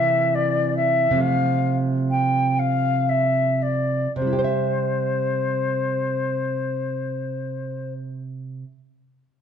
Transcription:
0.00 1.10 C3 medium
0.00 1.13 E3 medium
0.00 1.14 A#3 medium
0.00 0.36 E5 loud
0.35 0.76 D5 loud
0.77 1.22 E5 loud
1.11 4.06 C3 medium
1.11 4.08 F3 medium
1.17 4.10 A3 medium
1.17 1.77 F5 loud
2.10 2.61 G5 loud
2.59 3.10 F5 loud
3.09 3.64 E5 loud
3.62 4.15 D5 medium
4.16 8.63 C3 medium
4.16 7.93 C5 medium
4.22 8.66 G3 medium
4.27 4.38 E4 medium
4.33 8.72 G4 medium
4.39 4.44 C5 medium
4.44 8.78 E5 medium

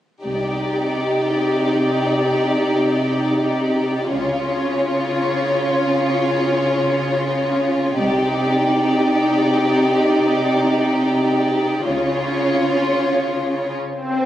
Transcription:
0.24 0.85 C2 soft
0.24 4.07 C3 soft
0.24 4.07 D#4 soft
0.24 4.07 G4 soft
0.24 4.08 D5 soft
4.10 4.72 C#2 soft
4.10 7.94 C#3 soft
4.10 7.94 C#4 soft
4.10 7.94 F4 soft
4.10 7.94 C#5 soft
7.98 8.59 C2 soft
7.98 11.86 C3 medium
7.98 11.81 D#4 medium
7.98 11.81 G4 soft
7.98 11.81 D5 soft
11.85 12.46 C#2 soft
11.85 13.75 C#3 soft
11.85 13.75 C#4 soft
11.85 13.75 F4 soft
11.85 13.75 C#5 soft
13.79 swell soft

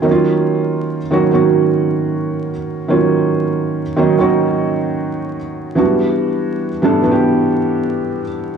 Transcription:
0.02 0.96 D#3 medium
0.02 0.96 F#3 medium
0.02 0.96 A#3 medium
0.02 0.96 C#4 medium
0.02 0.12 D#4 medium
0.11 1.00 F4 medium
1.11 1.28 D#3 medium
1.11 1.29 F#3 medium
1.11 1.29 A#3 medium
1.11 1.29 C#4 medium
1.11 1.30 F#4 medium
1.32 2.50 D#3 medium
1.32 2.50 F#3 medium
1.32 2.51 A#3 medium
1.32 2.51 C#4 medium
1.32 2.51 F#4 medium
2.88 3.82 D#3 medium
2.88 3.82 F#3 medium
2.88 3.82 A#3 medium
2.88 3.83 C#4 medium
2.88 3.83 F4 medium
3.96 4.14 D#3 medium
3.96 4.14 F#3 medium
3.96 4.14 A#3 medium
3.96 4.15 C#4 medium
3.96 4.15 D#4 medium
4.18 5.36 D#3 medium
4.18 5.37 F#3 medium
4.18 5.37 A#3 medium
4.18 5.37 C#4 medium
4.18 5.38 F#4 medium
5.75 6.68 E3 medium
5.75 5.83 F#3 medium
5.75 6.69 B3 medium
5.75 6.69 D4 medium
5.75 6.69 F#4 medium
5.82 6.71 G3 medium
6.82 7.00 E3 medium
6.82 7.00 G3 medium
6.82 7.00 B3 medium
6.82 7.01 D4 medium
6.82 7.01 A4 medium
7.02 8.21 E3 medium
7.02 8.21 G3 medium
7.02 8.22 B3 medium
7.02 8.22 D4 medium
7.02 7.09 F#4 medium
7.11 8.26 G4 medium

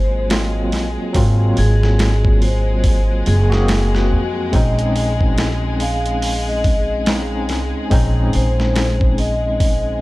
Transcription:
0.00 0.74 G#1 loud
0.00 0.26 F#3 medium
0.00 10.01 G#3 medium
0.00 0.27 A#3 medium
0.00 0.27 C4 medium
0.00 0.28 F4 medium
0.00 10.01 G#4 medium
0.00 0.26 C5 medium
0.30 1.11 F#3 medium
0.30 1.11 A#3 medium
0.30 1.11 C4 medium
0.30 1.12 F4 medium
0.30 snare loud
0.30 open hi-hat medium
0.72 0.96 A#1 medium
0.72 snare soft
0.72 open hi-hat medium
1.13 1.54 G#1 loud
1.13 3.22 F#3 medium
1.13 3.22 A#3 medium
1.13 3.23 C4 medium
1.13 3.23 F4 medium
1.13 kick loud
1.13 open hi-hat medium
1.57 3.27 G#1 medium
1.57 2.36 G#4 loud
1.57 open hi-hat medium
1.83 snare soft
1.99 snare loud
1.99 open hi-hat medium
2.25 kick loud
2.42 3.20 C5 medium
2.42 open hi-hat medium
2.84 kick loud
2.84 open hi-hat medium
3.26 4.13 F#1 medium
3.26 3.87 G#4 loud
3.26 open hi-hat medium
3.50 4.49 A#3 medium
3.50 4.50 C4 medium
3.50 4.48 F#4 loud
3.50 4.50 G#4 loud
3.50 snare medium
3.68 snare loud
3.68 open hi-hat medium
3.94 4.49 F#4 loud
3.94 snare soft
4.12 4.50 F2 medium
4.52 7.50 A#1 loud
4.52 7.02 G#3 medium
4.52 7.03 C4 medium
4.52 7.03 C#4 medium
4.52 7.04 D#4 loud
4.52 5.14 D#5 loud
4.52 kick loud
4.52 open hi-hat medium
4.79 closed hi-hat soft
4.96 open hi-hat medium
5.21 kick loud
5.38 snare loud
5.38 open hi-hat medium
5.80 6.41 F5 medium
5.80 open hi-hat medium
6.06 closed hi-hat soft
6.22 open hi-hat medium
6.49 7.02 D#5 loud
6.64 kick medium
6.64 open hi-hat medium
7.06 7.87 G#3 medium
7.06 7.88 C4 medium
7.06 7.88 C#4 medium
7.06 7.88 D#4 medium
7.06 snare loud
7.06 open hi-hat medium
7.49 7.72 C2 medium
7.49 snare soft
7.49 open hi-hat medium
7.90 8.30 A#1 loud
7.90 9.98 G#3 medium
7.90 9.99 C4 medium
7.90 9.99 C#4 medium
7.90 10.00 D#4 medium
7.90 kick loud
7.90 open hi-hat medium
8.33 10.01 A#1 medium
8.33 9.12 C5 medium
8.33 open hi-hat medium
8.60 snare soft
8.76 snare loud
8.76 open hi-hat medium
9.01 kick medium
9.18 9.97 D#5 medium
9.18 open hi-hat medium
9.60 kick loud
9.60 open hi-hat medium

